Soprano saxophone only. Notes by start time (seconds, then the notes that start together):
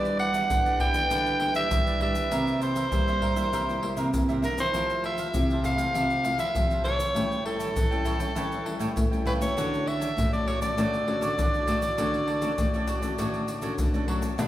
Already playing: D5
0.20 F#5
0.80 G5
1.56 E5
2.02 E5
2.63 C5
4.45 A#4
4.60 C5
5.06 E5
5.65 F5
6.40 E5
6.84 C#5
7.46 A4
9.27 B4
9.42 C#5
9.88 E5
10.33 D5
10.48 C#5
10.62 D5